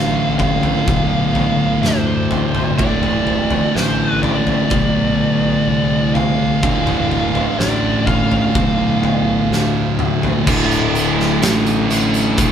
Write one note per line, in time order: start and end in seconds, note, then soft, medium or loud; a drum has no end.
0.00 0.74 A1 medium
0.00 2.75 D2 medium
0.00 2.76 A2 loud
0.00 2.77 D3 loud
0.00 10.43 D3 medium
0.00 10.43 E3 medium
0.00 10.43 A3 medium
0.00 0.35 F5 loud
0.38 1.79 F5 loud
0.38 kick medium
0.38 floor tom medium
0.63 floor tom medium
0.87 1.70 B1 loud
0.87 kick loud
0.87 floor tom medium
1.35 floor tom medium
1.82 2.66 D2 loud
1.82 2.75 C5 medium
1.82 snare medium
1.82 mid tom medium
2.31 floor tom medium
2.55 floor tom medium
2.55 mid tom medium
2.77 3.62 D1 medium
2.77 6.59 D2 medium
2.77 6.60 A2 loud
2.77 3.77 D5 loud
2.77 kick loud
2.77 floor tom medium
2.81 6.61 D3 loud
3.03 floor tom medium
3.27 floor tom medium
3.51 floor tom medium
3.75 4.58 A1 medium
3.75 4.08 C5 medium
3.75 snare medium
4.08 4.20 B4 medium
4.22 6.14 D5 medium
4.22 floor tom medium
4.47 floor tom medium
4.70 5.54 B1 medium
4.70 kick loud
4.70 floor tom medium
5.67 6.50 C2 loud
6.14 7.58 F5 medium
6.14 floor tom medium
6.62 7.46 D1 medium
6.62 10.43 D2 medium
6.62 10.44 A2 loud
6.62 10.45 D3 loud
6.62 kick loud
6.62 floor tom medium
6.87 floor tom medium
6.87 mid tom medium
7.12 floor tom medium
7.35 floor tom medium
7.59 8.42 A1 medium
7.59 8.06 D5 medium
7.59 snare medium
8.07 9.94 F5 medium
8.07 kick medium
8.07 floor tom medium
8.31 floor tom medium
8.55 9.38 B1 medium
8.55 kick loud
8.55 floor tom medium
9.03 floor tom medium
9.50 10.33 D2 medium
9.50 snare medium
9.99 mid tom medium
10.23 floor tom medium
10.45 11.38 D1 medium
10.45 11.91 D2 loud
10.45 11.87 A2 loud
10.45 12.52 D3 medium
10.45 11.88 D3 loud
10.45 12.52 A3 medium
10.45 12.52 E4 medium
10.45 kick loud
10.45 crash loud
10.71 closed hi-hat medium
10.95 closed hi-hat medium
11.20 snare soft
11.42 12.33 A1 medium
11.42 11.90 D2 medium
11.42 11.90 A2 medium
11.42 11.91 D3 loud
11.42 snare loud
11.42 closed hi-hat loud
11.66 closed hi-hat medium
11.88 12.52 D2 medium
11.88 12.52 A2 medium
11.88 12.52 D3 medium
11.88 closed hi-hat medium
12.14 closed hi-hat soft
12.37 12.52 F1 medium
12.37 12.52 D2 medium
12.37 12.52 A2 loud
12.37 12.52 D3 loud
12.37 kick loud
12.37 closed hi-hat loud